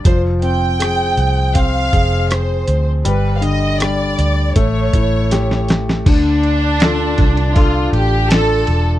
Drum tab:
CC |----------------|----------------|x---------------|
RD |----------------|----------------|x-x-x-xxx-x-x-x-|
HH |x-x-x-x-x-x-x-x-|x-x-x-x-x-x-x-x-|----------------|
SD |----r-------r---|----r-------oooo|----o-------o---|
BD |o-------o-o-----|--------o-o-----|o-----o-o-------|